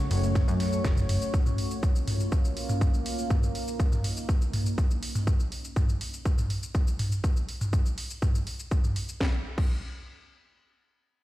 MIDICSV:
0, 0, Header, 1, 4, 480
1, 0, Start_track
1, 0, Key_signature, -5, "minor"
1, 0, Tempo, 491803
1, 1304, Time_signature, 4, 2, 24, 8
1, 10966, End_track
2, 0, Start_track
2, 0, Title_t, "Ambient pad"
2, 0, Program_c, 0, 92
2, 0, Note_on_c, 0, 57, 85
2, 0, Note_on_c, 0, 61, 80
2, 0, Note_on_c, 0, 66, 79
2, 0, Note_on_c, 0, 73, 92
2, 1267, Note_off_c, 0, 57, 0
2, 1267, Note_off_c, 0, 66, 0
2, 1306, Note_on_c, 0, 58, 84
2, 1307, Note_on_c, 0, 65, 76
2, 3206, Note_off_c, 0, 65, 0
2, 3227, Note_on_c, 0, 63, 78
2, 5106, Note_off_c, 0, 61, 0
2, 5106, Note_off_c, 0, 73, 0
2, 5107, Note_off_c, 0, 58, 0
2, 5126, Note_off_c, 0, 63, 0
2, 10966, End_track
3, 0, Start_track
3, 0, Title_t, "Analog synth bass"
3, 0, Program_c, 1, 38
3, 106, Note_on_c, 1, 30, 102
3, 434, Note_off_c, 1, 30, 0
3, 468, Note_on_c, 1, 42, 103
3, 792, Note_off_c, 1, 42, 0
3, 825, Note_on_c, 1, 30, 83
3, 1153, Note_off_c, 1, 30, 0
3, 10966, End_track
4, 0, Start_track
4, 0, Title_t, "Drums"
4, 105, Note_on_c, 9, 46, 108
4, 107, Note_on_c, 9, 51, 66
4, 203, Note_off_c, 9, 46, 0
4, 205, Note_off_c, 9, 51, 0
4, 230, Note_on_c, 9, 82, 51
4, 328, Note_off_c, 9, 82, 0
4, 345, Note_on_c, 9, 36, 118
4, 346, Note_on_c, 9, 45, 90
4, 346, Note_on_c, 9, 51, 86
4, 346, Note_on_c, 9, 82, 53
4, 443, Note_off_c, 9, 36, 0
4, 444, Note_off_c, 9, 45, 0
4, 444, Note_off_c, 9, 51, 0
4, 444, Note_off_c, 9, 82, 0
4, 469, Note_on_c, 9, 82, 51
4, 567, Note_off_c, 9, 82, 0
4, 586, Note_on_c, 9, 38, 37
4, 586, Note_on_c, 9, 46, 104
4, 586, Note_on_c, 9, 51, 66
4, 684, Note_off_c, 9, 38, 0
4, 684, Note_off_c, 9, 46, 0
4, 684, Note_off_c, 9, 51, 0
4, 710, Note_on_c, 9, 82, 53
4, 808, Note_off_c, 9, 82, 0
4, 825, Note_on_c, 9, 36, 119
4, 825, Note_on_c, 9, 38, 112
4, 825, Note_on_c, 9, 51, 85
4, 826, Note_on_c, 9, 82, 52
4, 923, Note_off_c, 9, 36, 0
4, 923, Note_off_c, 9, 38, 0
4, 923, Note_off_c, 9, 51, 0
4, 923, Note_off_c, 9, 82, 0
4, 949, Note_on_c, 9, 45, 87
4, 949, Note_on_c, 9, 82, 51
4, 1046, Note_off_c, 9, 45, 0
4, 1046, Note_off_c, 9, 82, 0
4, 1065, Note_on_c, 9, 46, 108
4, 1066, Note_on_c, 9, 51, 67
4, 1163, Note_off_c, 9, 46, 0
4, 1163, Note_off_c, 9, 51, 0
4, 1189, Note_on_c, 9, 82, 53
4, 1287, Note_off_c, 9, 82, 0
4, 1305, Note_on_c, 9, 36, 118
4, 1305, Note_on_c, 9, 82, 53
4, 1403, Note_off_c, 9, 36, 0
4, 1403, Note_off_c, 9, 82, 0
4, 1428, Note_on_c, 9, 45, 94
4, 1428, Note_on_c, 9, 82, 52
4, 1526, Note_off_c, 9, 45, 0
4, 1526, Note_off_c, 9, 82, 0
4, 1545, Note_on_c, 9, 46, 99
4, 1642, Note_off_c, 9, 46, 0
4, 1669, Note_on_c, 9, 82, 52
4, 1766, Note_off_c, 9, 82, 0
4, 1785, Note_on_c, 9, 36, 117
4, 1786, Note_on_c, 9, 82, 52
4, 1883, Note_off_c, 9, 36, 0
4, 1883, Note_off_c, 9, 82, 0
4, 1908, Note_on_c, 9, 82, 52
4, 2006, Note_off_c, 9, 82, 0
4, 2025, Note_on_c, 9, 45, 93
4, 2025, Note_on_c, 9, 46, 99
4, 2123, Note_off_c, 9, 45, 0
4, 2123, Note_off_c, 9, 46, 0
4, 2149, Note_on_c, 9, 82, 52
4, 2247, Note_off_c, 9, 82, 0
4, 2265, Note_on_c, 9, 36, 113
4, 2265, Note_on_c, 9, 82, 52
4, 2362, Note_off_c, 9, 82, 0
4, 2363, Note_off_c, 9, 36, 0
4, 2388, Note_on_c, 9, 82, 52
4, 2486, Note_off_c, 9, 82, 0
4, 2505, Note_on_c, 9, 46, 103
4, 2603, Note_off_c, 9, 46, 0
4, 2629, Note_on_c, 9, 45, 94
4, 2629, Note_on_c, 9, 82, 54
4, 2726, Note_off_c, 9, 45, 0
4, 2726, Note_off_c, 9, 82, 0
4, 2745, Note_on_c, 9, 36, 115
4, 2745, Note_on_c, 9, 82, 50
4, 2843, Note_off_c, 9, 36, 0
4, 2843, Note_off_c, 9, 82, 0
4, 2869, Note_on_c, 9, 82, 52
4, 2967, Note_off_c, 9, 82, 0
4, 2985, Note_on_c, 9, 46, 106
4, 3082, Note_off_c, 9, 46, 0
4, 3109, Note_on_c, 9, 82, 52
4, 3207, Note_off_c, 9, 82, 0
4, 3225, Note_on_c, 9, 36, 110
4, 3225, Note_on_c, 9, 45, 95
4, 3225, Note_on_c, 9, 82, 53
4, 3323, Note_off_c, 9, 36, 0
4, 3323, Note_off_c, 9, 45, 0
4, 3323, Note_off_c, 9, 82, 0
4, 3349, Note_on_c, 9, 82, 53
4, 3446, Note_off_c, 9, 82, 0
4, 3465, Note_on_c, 9, 46, 94
4, 3562, Note_off_c, 9, 46, 0
4, 3589, Note_on_c, 9, 82, 52
4, 3687, Note_off_c, 9, 82, 0
4, 3705, Note_on_c, 9, 36, 114
4, 3706, Note_on_c, 9, 82, 52
4, 3802, Note_off_c, 9, 36, 0
4, 3803, Note_off_c, 9, 82, 0
4, 3830, Note_on_c, 9, 45, 94
4, 3830, Note_on_c, 9, 82, 55
4, 3927, Note_off_c, 9, 45, 0
4, 3927, Note_off_c, 9, 82, 0
4, 3946, Note_on_c, 9, 46, 99
4, 4043, Note_off_c, 9, 46, 0
4, 4069, Note_on_c, 9, 82, 53
4, 4167, Note_off_c, 9, 82, 0
4, 4185, Note_on_c, 9, 36, 111
4, 4186, Note_on_c, 9, 82, 53
4, 4282, Note_off_c, 9, 36, 0
4, 4283, Note_off_c, 9, 82, 0
4, 4309, Note_on_c, 9, 82, 50
4, 4407, Note_off_c, 9, 82, 0
4, 4426, Note_on_c, 9, 45, 93
4, 4426, Note_on_c, 9, 46, 99
4, 4523, Note_off_c, 9, 45, 0
4, 4523, Note_off_c, 9, 46, 0
4, 4550, Note_on_c, 9, 82, 54
4, 4647, Note_off_c, 9, 82, 0
4, 4665, Note_on_c, 9, 36, 111
4, 4665, Note_on_c, 9, 82, 53
4, 4762, Note_off_c, 9, 36, 0
4, 4763, Note_off_c, 9, 82, 0
4, 4790, Note_on_c, 9, 82, 50
4, 4887, Note_off_c, 9, 82, 0
4, 4905, Note_on_c, 9, 46, 101
4, 5003, Note_off_c, 9, 46, 0
4, 5030, Note_on_c, 9, 45, 92
4, 5030, Note_on_c, 9, 82, 53
4, 5127, Note_off_c, 9, 45, 0
4, 5127, Note_off_c, 9, 82, 0
4, 5145, Note_on_c, 9, 36, 107
4, 5146, Note_on_c, 9, 82, 54
4, 5242, Note_off_c, 9, 36, 0
4, 5243, Note_off_c, 9, 82, 0
4, 5270, Note_on_c, 9, 82, 55
4, 5367, Note_off_c, 9, 82, 0
4, 5387, Note_on_c, 9, 46, 94
4, 5484, Note_off_c, 9, 46, 0
4, 5510, Note_on_c, 9, 82, 55
4, 5608, Note_off_c, 9, 82, 0
4, 5625, Note_on_c, 9, 36, 108
4, 5626, Note_on_c, 9, 45, 91
4, 5626, Note_on_c, 9, 82, 54
4, 5723, Note_off_c, 9, 36, 0
4, 5724, Note_off_c, 9, 45, 0
4, 5724, Note_off_c, 9, 82, 0
4, 5750, Note_on_c, 9, 82, 55
4, 5847, Note_off_c, 9, 82, 0
4, 5866, Note_on_c, 9, 46, 97
4, 5963, Note_off_c, 9, 46, 0
4, 5989, Note_on_c, 9, 82, 55
4, 6087, Note_off_c, 9, 82, 0
4, 6105, Note_on_c, 9, 36, 108
4, 6105, Note_on_c, 9, 82, 54
4, 6202, Note_off_c, 9, 36, 0
4, 6203, Note_off_c, 9, 82, 0
4, 6229, Note_on_c, 9, 45, 89
4, 6229, Note_on_c, 9, 82, 55
4, 6327, Note_off_c, 9, 45, 0
4, 6327, Note_off_c, 9, 82, 0
4, 6345, Note_on_c, 9, 46, 99
4, 6443, Note_off_c, 9, 46, 0
4, 6469, Note_on_c, 9, 82, 54
4, 6567, Note_off_c, 9, 82, 0
4, 6585, Note_on_c, 9, 36, 109
4, 6585, Note_on_c, 9, 82, 54
4, 6682, Note_off_c, 9, 36, 0
4, 6683, Note_off_c, 9, 82, 0
4, 6709, Note_on_c, 9, 82, 55
4, 6806, Note_off_c, 9, 82, 0
4, 6825, Note_on_c, 9, 45, 93
4, 6825, Note_on_c, 9, 46, 98
4, 6923, Note_off_c, 9, 45, 0
4, 6923, Note_off_c, 9, 46, 0
4, 6949, Note_on_c, 9, 82, 53
4, 7046, Note_off_c, 9, 82, 0
4, 7065, Note_on_c, 9, 36, 107
4, 7066, Note_on_c, 9, 82, 57
4, 7162, Note_off_c, 9, 36, 0
4, 7163, Note_off_c, 9, 82, 0
4, 7189, Note_on_c, 9, 82, 56
4, 7287, Note_off_c, 9, 82, 0
4, 7306, Note_on_c, 9, 46, 93
4, 7404, Note_off_c, 9, 46, 0
4, 7429, Note_on_c, 9, 45, 86
4, 7429, Note_on_c, 9, 82, 55
4, 7527, Note_off_c, 9, 45, 0
4, 7527, Note_off_c, 9, 82, 0
4, 7545, Note_on_c, 9, 36, 108
4, 7545, Note_on_c, 9, 82, 57
4, 7642, Note_off_c, 9, 36, 0
4, 7643, Note_off_c, 9, 82, 0
4, 7669, Note_on_c, 9, 82, 58
4, 7767, Note_off_c, 9, 82, 0
4, 7786, Note_on_c, 9, 46, 97
4, 7883, Note_off_c, 9, 46, 0
4, 7910, Note_on_c, 9, 82, 55
4, 8007, Note_off_c, 9, 82, 0
4, 8025, Note_on_c, 9, 36, 107
4, 8026, Note_on_c, 9, 45, 88
4, 8026, Note_on_c, 9, 82, 57
4, 8123, Note_off_c, 9, 36, 0
4, 8123, Note_off_c, 9, 45, 0
4, 8123, Note_off_c, 9, 82, 0
4, 8149, Note_on_c, 9, 82, 56
4, 8247, Note_off_c, 9, 82, 0
4, 8265, Note_on_c, 9, 46, 97
4, 8363, Note_off_c, 9, 46, 0
4, 8388, Note_on_c, 9, 82, 57
4, 8486, Note_off_c, 9, 82, 0
4, 8505, Note_on_c, 9, 36, 110
4, 8505, Note_on_c, 9, 82, 54
4, 8602, Note_off_c, 9, 36, 0
4, 8602, Note_off_c, 9, 82, 0
4, 8629, Note_on_c, 9, 45, 83
4, 8629, Note_on_c, 9, 82, 55
4, 8727, Note_off_c, 9, 45, 0
4, 8727, Note_off_c, 9, 82, 0
4, 8745, Note_on_c, 9, 46, 98
4, 8843, Note_off_c, 9, 46, 0
4, 8870, Note_on_c, 9, 82, 57
4, 8967, Note_off_c, 9, 82, 0
4, 8984, Note_on_c, 9, 36, 106
4, 8986, Note_on_c, 9, 38, 81
4, 9082, Note_off_c, 9, 36, 0
4, 9084, Note_off_c, 9, 38, 0
4, 9348, Note_on_c, 9, 36, 104
4, 9350, Note_on_c, 9, 49, 81
4, 9446, Note_off_c, 9, 36, 0
4, 9447, Note_off_c, 9, 49, 0
4, 10966, End_track
0, 0, End_of_file